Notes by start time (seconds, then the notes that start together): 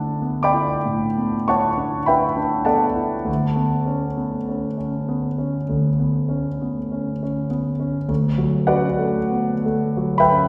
Already playing: D2 B3 D4 E4 A4 D5 F#5 A5
0.22 B3
0.43 D5 G5 B5 D6
0.54 E4
0.85 A2
1.18 B3
1.48 E4 C#5 F#5 A5 C#6
1.78 D4
2.06 E4 B4 E5 G5 B5
2.37 D4
2.65 B3 A4 D5 F#5 A5
2.96 E4
3.25 D2
3.56 B3
3.86 C#4
4.17 B3
4.49 C#4
4.77 C#4
5.08 B3
5.38 C#4
5.69 D2
6.00 B3
6.29 C#4
6.62 B3
6.92 C#4
7.23 C#4
7.50 B3
7.80 C#4
8.09 D2
8.38 F#3
8.67 C#4 F#4 B4 D5 F#5
8.98 A3
9.32 B3
9.66 A3
9.97 F#3
10.18 B4 E5 G5 B5
10.30 C#4